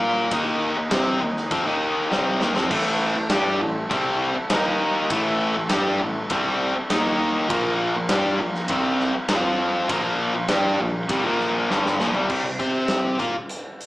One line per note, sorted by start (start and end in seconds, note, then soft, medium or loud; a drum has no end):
0.00 0.28 A#2 loud
0.00 0.29 A#3 medium
0.00 0.30 A#3 loud
0.00 0.31 F4 medium
0.00 0.31 F4 loud
0.00 0.28 A#4 medium
0.00 0.31 A#4 loud
0.00 0.31 F5 medium
0.29 0.73 D#2 medium
0.29 0.76 D#3 medium
0.29 2.68 A#3 medium
0.29 0.76 A#3 loud
0.29 2.68 D#4 medium
0.29 2.68 A#4 medium
0.29 2.68 D#5 medium
0.29 kick loud
0.29 ride bell medium
0.33 0.77 D#4 loud
0.77 0.91 D#2 medium
0.77 0.92 D#3 medium
0.77 0.91 A#3 medium
0.91 1.19 C3 medium
0.91 1.21 C4 medium
0.91 1.21 G4 medium
0.91 1.21 C5 medium
0.91 snare loud
0.91 ride bell medium
1.21 1.49 D#2 medium
1.21 1.45 D#3 medium
1.21 1.45 A#3 medium
1.37 snare soft
1.51 1.65 F2 medium
1.51 1.65 F3 medium
1.51 1.66 C4 loud
1.51 kick loud
1.51 ride bell medium
1.66 2.08 D#2 medium
1.66 2.09 D#3 medium
1.66 2.11 A#3 medium
1.66 2.11 D#4 medium
2.10 2.39 C2 medium
2.10 2.40 C3 loud
2.10 2.40 G3 medium
2.10 2.41 C4 loud
2.10 snare medium
2.41 2.55 D#2 medium
2.41 2.54 D#3 loud
2.41 2.55 A#3 loud
2.41 snare medium
2.55 2.71 F2 medium
2.55 2.69 F3 medium
2.55 2.70 C4 loud
2.55 snare medium
2.70 3.13 A1 medium
2.70 3.15 A2 medium
2.70 3.15 E3 medium
2.70 4.49 A3 medium
2.70 3.16 A3 loud
2.70 4.50 E4 medium
2.70 4.50 A4 medium
2.70 4.50 E5 medium
2.70 kick loud
2.70 crash medium
3.16 3.31 A1 medium
3.16 3.31 A2 medium
3.16 3.30 E3 medium
3.30 3.59 G2 medium
3.30 3.60 G3 medium
3.30 3.60 D4 medium
3.30 3.60 G4 loud
3.30 snare loud
3.30 ride bell medium
3.60 3.89 A1 medium
3.60 3.84 A2 medium
3.60 3.85 E3 medium
3.89 4.33 C2 medium
3.89 4.34 C3 medium
3.89 4.35 G3 loud
3.89 4.35 C4 loud
3.89 kick loud
3.89 ride bell medium
4.35 muted distorted electric guitar stroke medium
4.35 muted overdriven electric guitar stroke medium
4.35 muted picked electric bass stroke soft
4.50 5.07 D#2 medium
4.50 5.09 D#3 medium
4.50 5.10 A#3 medium
4.50 5.10 D#4 loud
4.50 5.10 D#4 medium
4.50 5.10 A#4 medium
4.50 5.10 D#5 medium
4.50 snare loud
4.50 ride bell medium
5.10 5.52 A1 medium
5.10 5.55 A2 medium
5.10 5.55 E3 loud
5.10 6.88 A3 medium
5.10 5.55 A3 loud
5.10 6.89 E4 medium
5.10 6.89 A4 medium
5.10 6.88 E5 medium
5.10 kick loud
5.10 ride bell medium
5.56 5.70 A1 medium
5.56 5.71 A2 medium
5.56 5.69 E3 medium
5.69 5.99 G2 medium
5.69 5.99 G3 medium
5.69 5.99 D4 medium
5.69 6.00 G4 loud
5.69 snare loud
5.69 ride bell medium
6.00 6.29 A1 medium
6.00 6.24 A2 medium
6.00 6.25 E3 medium
6.30 6.72 C2 medium
6.30 6.74 C3 medium
6.30 6.75 G3 loud
6.30 6.75 C4 medium
6.30 kick loud
6.30 ride bell medium
6.76 muted overdriven electric guitar stroke medium
6.76 muted distorted electric guitar stroke medium
6.76 muted picked electric bass stroke soft
6.90 7.47 D#2 medium
6.90 7.49 D#3 loud
6.90 7.47 A#3 medium
6.90 7.49 A#3 loud
6.90 7.49 D#4 medium
6.90 7.49 D#4 loud
6.90 7.47 A#4 medium
6.90 7.49 D#5 medium
6.90 snare loud
6.90 ride bell medium
7.48 7.92 A#1 loud
7.48 7.94 A#2 medium
7.48 7.94 F3 loud
7.48 9.27 A#3 medium
7.48 7.95 A#3 loud
7.48 9.27 F4 medium
7.48 9.27 A#4 medium
7.48 9.28 F5 medium
7.48 kick loud
7.48 ride bell medium
7.95 8.10 A#1 medium
7.95 8.10 A#2 medium
7.95 8.09 F3 medium
8.09 8.39 G2 loud
8.09 8.39 G3 medium
8.09 8.39 D4 medium
8.09 8.39 G4 loud
8.09 snare loud
8.09 ride bell medium
8.40 8.68 A#1 medium
8.40 8.64 A#2 medium
8.40 8.64 F3 medium
8.55 snare soft
8.68 9.11 C2 loud
8.68 9.13 C3 medium
8.68 9.14 G3 loud
8.68 9.14 C4 loud
8.68 kick loud
8.68 ride bell medium
9.00 snare soft
9.13 muted distorted electric guitar stroke medium
9.13 muted overdriven electric guitar stroke medium
9.13 muted picked electric bass stroke soft
9.29 9.86 F2 medium
9.29 9.88 F3 loud
9.29 9.89 C4 loud
9.29 9.90 C4 medium
9.29 9.89 F4 loud
9.29 9.89 F4 medium
9.29 9.90 C5 medium
9.29 9.89 F5 medium
9.29 snare loud
9.29 ride bell medium
9.89 10.32 A#1 medium
9.89 10.34 A#2 medium
9.89 10.33 F3 loud
9.89 12.28 A#3 medium
9.89 10.34 A#3 loud
9.89 12.28 F4 medium
9.89 12.28 A#4 medium
9.89 12.28 F5 medium
9.89 kick loud
9.89 ride bell medium
10.35 10.49 A#1 medium
10.35 10.50 A#2 medium
10.35 10.49 F3 medium
10.48 10.77 G2 medium
10.48 10.79 G3 medium
10.48 10.79 D4 medium
10.48 10.79 G4 medium
10.48 snare loud
10.48 ride bell medium
10.78 11.07 A#1 medium
10.78 11.04 A#2 medium
10.78 11.04 F3 medium
11.09 11.24 C2 medium
11.09 11.24 C3 medium
11.09 11.25 G3 loud
11.09 kick medium
11.09 ride bell medium
11.25 11.67 A#1 medium
11.25 11.69 A#2 medium
11.25 11.69 F3 medium
11.25 11.70 A#3 medium
11.40 snare soft
11.69 11.97 G1 loud
11.69 11.99 G2 loud
11.69 11.99 D3 medium
11.69 11.99 G3 loud
11.69 snare medium
11.86 snare medium
11.99 12.13 A#1 medium
11.99 12.14 A#2 medium
11.99 12.15 F3 medium
11.99 snare medium
12.14 12.28 C2 medium
12.14 12.29 C3 medium
12.14 12.29 G3 medium
12.14 floor tom medium
12.29 12.44 C2 medium
12.29 12.44 C3 medium
12.29 12.44 G3 medium
12.29 kick medium
12.29 crash medium
12.44 12.59 C2 medium
12.44 12.60 C3 medium
12.44 12.59 G3 medium
12.59 13.16 C3 medium
12.59 13.19 C4 medium
12.59 13.20 G4 medium
12.59 13.20 C5 medium
12.59 kick medium
12.59 closed hi-hat medium
12.88 snare loud
12.88 closed hi-hat medium
13.19 13.34 A#2 medium
13.19 13.34 A#3 medium
13.19 13.35 F4 medium
13.19 kick medium
13.19 closed hi-hat medium
13.49 closed hi-hat medium
13.81 closed hi-hat medium